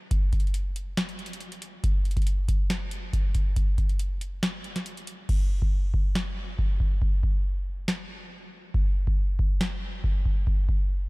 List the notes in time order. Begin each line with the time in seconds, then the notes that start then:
0.11 kick, closed hi-hat
0.33 kick, closed hi-hat
0.40 closed hi-hat
0.47 closed hi-hat
0.54 closed hi-hat
0.76 closed hi-hat
0.97 snare, closed hi-hat
1.09 closed hi-hat
1.19 closed hi-hat
1.26 closed hi-hat
1.33 closed hi-hat
1.41 closed hi-hat
1.52 closed hi-hat
1.62 closed hi-hat
1.84 kick, closed hi-hat
2.05 closed hi-hat
2.11 closed hi-hat
2.17 kick, closed hi-hat
2.22 closed hi-hat
2.27 closed hi-hat
2.48 kick, closed hi-hat
2.70 snare, closed hi-hat
2.91 closed hi-hat
3.13 kick, closed hi-hat
3.35 kick, closed hi-hat
3.56 kick, closed hi-hat
3.78 kick, closed hi-hat
3.89 closed hi-hat
3.99 closed hi-hat
4.21 closed hi-hat
4.43 snare, closed hi-hat
4.64 closed hi-hat
4.76 snare, closed hi-hat
4.86 closed hi-hat
4.97 closed hi-hat
5.07 closed hi-hat
5.29 kick, crash
5.62 kick
5.94 kick
6.15 snare
6.59 kick
6.80 kick
7.02 kick
7.23 kick
7.88 snare
8.74 kick
9.07 kick
9.39 kick
9.61 snare
10.04 kick
10.25 kick
10.47 kick
10.69 kick